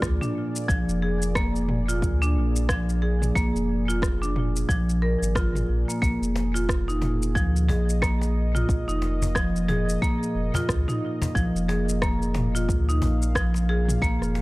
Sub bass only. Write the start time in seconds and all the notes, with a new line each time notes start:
0.02 D2
0.69 A#1
0.88 F1
2.02 D2
2.36 A#1
3.36 A#1
3.55 F1
4.69 A#1
5.22 G#1
5.69 A#1
6.02 A#1
6.21 F1
7.35 D2
7.69 A#1
8.69 A#1
8.87 F1
10.35 F1
10.69 D2
11.35 A#1
11.55 F1
12.69 D2
13.02 A#1
14.02 A#1
14.21 F1